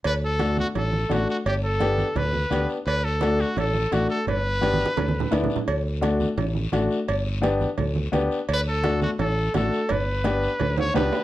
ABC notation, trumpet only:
X:1
M:4/4
L:1/8
Q:1/4=171
K:D
V:1 name="Trumpet"
B A2 F A2 F F | G A3 B3 z | B A2 F A2 F A | B6- B z |
z8 | z8 | B A2 F A2 A2 | B4- B c B2 |]